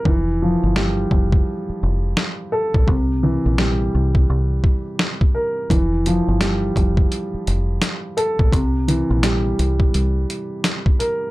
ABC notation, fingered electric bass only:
X:1
M:4/4
L:1/16
Q:"Swing 16ths" 1/4=85
K:Cmix
V:1 name="Fingered electric bass" clef=bass
F,,,3 G,,,3 F,,,2 z2 F,,,2 z3 B,,, | C,,3 B,,,3 C,,2 C,,2 z6 | F,,,3 G,,,3 F,,,2 z2 F,,,2 z3 B,,, | C,,3 B,,,3 C,,2 C,,2 z6 |]